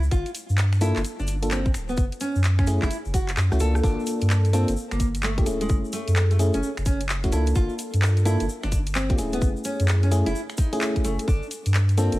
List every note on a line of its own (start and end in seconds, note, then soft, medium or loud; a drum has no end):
0.03 shaker soft
0.11 0.24 G1 loud
0.11 0.29 F4 medium
0.11 kick loud
0.11 closed hi-hat medium
0.11 shaker soft
0.26 closed hi-hat soft
0.26 shaker soft
0.35 open hi-hat loud
0.35 shaker medium
0.49 0.92 G2 medium
0.49 shaker soft
0.58 clap loud
0.58 closed hi-hat medium
0.58 shaker medium
0.73 finger snap medium
0.73 shaker soft
0.81 1.01 A#3 medium
0.81 1.01 D4 medium
0.81 0.99 E4 medium
0.81 1.01 F4 medium
0.81 1.01 A4 loud
0.81 open hi-hat medium
0.81 shaker medium
0.96 1.03 G1 medium
0.96 clap medium
0.96 shaker soft
1.04 closed hi-hat medium
1.04 shaker medium
1.19 1.72 G1 medium
1.19 1.33 D4 medium
1.19 shaker soft
1.27 open hi-hat loud
1.27 shaker medium
1.42 1.60 A#3 medium
1.42 1.60 D4 medium
1.42 1.60 F4 medium
1.42 1.60 A4 medium
1.42 closed hi-hat medium
1.42 shaker soft
1.51 1.69 C4 medium
1.51 clap loud
1.51 closed hi-hat medium
1.51 shaker soft
1.66 kick loud
1.66 shaker soft
1.74 1.95 D1 medium
1.74 finger snap medium
1.74 open hi-hat medium
1.74 shaker medium
1.89 2.03 B3 medium
1.89 shaker soft
1.97 2.10 F#1 loud
1.97 kick loud
1.97 closed hi-hat medium
1.97 shaker medium
2.12 closed hi-hat soft
2.12 shaker soft
2.20 2.39 C#4 medium
2.20 open hi-hat loud
2.20 shaker medium
2.35 2.78 F#2 loud
2.35 shaker soft
2.43 clap loud
2.43 closed hi-hat medium
2.43 shaker medium
2.59 2.67 C#4 medium
2.59 finger snap medium
2.59 kick loud
2.59 shaker soft
2.67 2.87 A3 loud
2.67 2.87 C#4 medium
2.67 2.87 E4 medium
2.67 2.87 G#4 loud
2.67 open hi-hat medium
2.67 shaker medium
2.82 2.89 F#1 medium
2.82 2.96 E4 medium
2.82 kick medium
2.82 clap medium
2.82 shaker soft
2.91 closed hi-hat medium
2.91 shaker medium
3.05 3.37 F#1 loud
3.05 shaker soft
3.14 3.27 F#4 medium
3.14 kick loud
3.14 open hi-hat loud
3.14 shaker medium
3.28 clap medium
3.28 closed hi-hat medium
3.28 shaker soft
3.37 3.50 F#2 medium
3.37 cross-stick medium
3.37 clap loud
3.37 closed hi-hat medium
3.37 shaker soft
3.52 3.59 C#2 loud
3.52 3.59 A3 medium
3.52 3.59 C#4 medium
3.52 3.59 E4 medium
3.52 3.59 F#4 medium
3.52 cross-stick medium
3.52 shaker soft
3.60 3.81 C#2 medium
3.60 3.82 A#3 medium
3.60 3.82 D4 medium
3.60 3.82 F4 medium
3.60 3.74 A4 medium
3.60 3.82 A4 medium
3.60 open hi-hat loud
3.60 shaker medium
3.75 cross-stick medium
3.75 shaker soft
3.84 3.96 G1 loud
3.84 4.50 A#3 loud
3.84 4.50 D4 medium
3.84 4.01 D4 loud
3.84 4.50 F4 medium
3.84 4.50 A4 loud
3.84 kick loud
3.84 shaker medium
4.00 shaker soft
4.07 open hi-hat loud
4.07 shaker loud
4.21 4.64 G2 loud
4.21 closed hi-hat medium
4.21 shaker soft
4.30 finger snap medium
4.30 clap loud
4.30 shaker medium
4.45 closed hi-hat soft
4.45 shaker soft
4.53 4.73 A#3 medium
4.53 4.71 C4 medium
4.53 4.73 D4 medium
4.53 4.73 F4 medium
4.53 4.73 A4 loud
4.53 open hi-hat medium
4.53 shaker medium
4.68 4.75 G1 medium
4.68 closed hi-hat medium
4.68 shaker soft
4.76 shaker soft
4.91 5.44 G1 medium
4.91 5.05 A#3 loud
4.91 finger snap medium
4.91 closed hi-hat soft
4.91 shaker soft
5.00 kick medium
5.00 open hi-hat loud
5.00 shaker loud
5.15 closed hi-hat medium
5.15 shaker soft
5.23 5.41 A3 medium
5.23 clap loud
5.23 shaker soft
5.38 5.45 A#3 medium
5.38 5.45 D4 medium
5.38 5.45 F4 medium
5.38 5.45 G4 medium
5.38 kick loud
5.38 closed hi-hat medium
5.38 shaker soft
5.46 5.67 D1 medium
5.46 6.37 A3 medium
5.46 6.37 C#4 medium
5.46 6.37 E4 medium
5.46 6.37 G#4 medium
5.46 open hi-hat loud
5.46 shaker medium
5.61 5.75 G#3 medium
5.61 closed hi-hat medium
5.61 shaker soft
5.69 5.82 F#1 loud
5.69 kick loud
5.69 shaker medium
5.85 shaker soft
5.93 6.11 A3 medium
5.93 open hi-hat loud
5.93 shaker loud
6.08 6.51 F#2 loud
6.08 closed hi-hat medium
6.08 shaker soft
6.16 finger snap medium
6.16 clap loud
6.16 shaker medium
6.31 6.39 A3 medium
6.31 closed hi-hat soft
6.31 shaker soft
6.39 6.59 A3 loud
6.39 6.59 C#4 medium
6.39 6.59 E4 medium
6.39 6.59 G#4 loud
6.39 open hi-hat medium
6.39 shaker medium
6.54 6.61 F#1 medium
6.54 6.68 C#4 medium
6.54 closed hi-hat medium
6.54 shaker soft
6.63 shaker medium
6.77 7.30 F#1 medium
6.77 finger snap medium
6.77 closed hi-hat soft
6.77 shaker soft
6.86 6.99 C#4 medium
6.86 kick loud
6.86 open hi-hat loud
6.86 shaker loud
7.00 closed hi-hat medium
7.00 shaker soft
7.09 clap loud
7.09 shaker medium
7.24 7.31 A3 medium
7.24 7.31 C#4 medium
7.24 7.31 E4 medium
7.24 7.31 F#4 medium
7.24 kick medium
7.24 closed hi-hat medium
7.24 shaker soft
7.32 7.53 C#2 loud
7.32 8.23 A#3 medium
7.32 8.23 D4 medium
7.32 7.46 E4 medium
7.32 8.23 F4 medium
7.32 8.23 A4 medium
7.32 open hi-hat loud
7.32 shaker medium
7.47 closed hi-hat medium
7.47 shaker soft
7.55 7.68 G1 loud
7.55 7.74 F4 loud
7.55 kick loud
7.55 shaker medium
7.69 shaker soft
7.79 open hi-hat loud
7.79 shaker loud
7.94 8.37 G2 loud
7.94 closed hi-hat medium
7.94 shaker soft
8.02 finger snap medium
8.02 clap loud
8.02 shaker medium
8.17 closed hi-hat soft
8.17 shaker soft
8.25 8.45 A#3 medium
8.25 8.45 D4 medium
8.25 8.43 E4 medium
8.25 8.45 F4 medium
8.25 8.45 A4 loud
8.25 open hi-hat medium
8.25 shaker loud
8.40 8.47 G1 medium
8.40 closed hi-hat medium
8.40 shaker soft
8.49 shaker medium
8.63 9.16 G1 loud
8.63 8.77 D4 medium
8.63 finger snap medium
8.63 closed hi-hat soft
8.63 shaker soft
8.72 kick medium
8.72 open hi-hat loud
8.72 shaker loud
8.86 closed hi-hat medium
8.86 shaker soft
8.95 9.13 C4 loud
8.95 clap loud
8.95 shaker medium
9.09 9.17 A#3 medium
9.09 9.17 D4 medium
9.09 9.17 F4 medium
9.09 9.17 G4 medium
9.09 kick loud
9.09 closed hi-hat soft
9.09 shaker soft
9.18 9.39 D1 medium
9.18 10.09 A3 medium
9.18 10.09 C#4 medium
9.18 10.09 E4 medium
9.18 10.09 G#4 medium
9.18 open hi-hat medium
9.18 shaker loud
9.33 9.47 B3 medium
9.33 closed hi-hat medium
9.33 shaker soft
9.42 9.54 F#1 loud
9.42 kick loud
9.42 shaker medium
9.56 shaker soft
9.64 9.83 C#4 medium
9.64 open hi-hat loud
9.64 shaker loud
9.80 10.23 F#2 loud
9.80 closed hi-hat medium
9.80 shaker soft
9.88 finger snap medium
9.88 clap loud
9.88 shaker medium
10.03 10.11 C#4 medium
10.03 closed hi-hat soft
10.03 shaker soft
10.11 10.31 A3 medium
10.11 10.31 C#4 medium
10.11 10.31 E4 medium
10.11 10.31 G#4 loud
10.11 open hi-hat medium
10.11 shaker loud
10.26 10.33 F#1 medium
10.26 10.40 E4 medium
10.26 closed hi-hat medium
10.26 shaker soft
10.35 shaker medium
10.49 finger snap medium
10.49 closed hi-hat soft
10.49 shaker soft
10.57 10.72 D#4 medium
10.57 kick loud
10.57 open hi-hat loud
10.57 shaker loud
10.73 11.27 A3 loud
10.73 11.27 C#4 medium
10.73 11.27 E4 medium
10.73 11.27 G#4 loud
10.73 closed hi-hat medium
10.73 shaker soft
10.81 clap loud
10.81 shaker medium
10.96 kick medium
10.96 closed hi-hat soft
10.96 shaker soft
11.05 11.17 F#1 loud
11.05 11.18 A3 medium
11.05 open hi-hat medium
11.05 shaker medium
11.19 closed hi-hat medium
11.19 shaker soft
11.28 11.40 G1 loud
11.28 11.46 D4 loud
11.28 kick loud
11.28 shaker medium
11.43 shaker soft
11.51 open hi-hat loud
11.51 shaker medium
11.66 12.09 G2 loud
11.66 closed hi-hat medium
11.66 shaker soft
11.74 finger snap medium
11.74 clap loud
11.74 shaker soft
11.89 closed hi-hat soft
11.89 shaker soft
11.98 12.17 A#3 loud
11.98 12.16 C4 medium
11.98 12.17 D4 medium
11.98 12.17 F4 medium
11.98 12.17 A4 loud
11.98 open hi-hat medium
11.98 shaker medium
12.12 12.19 G1 medium
12.12 closed hi-hat medium
12.12 shaker soft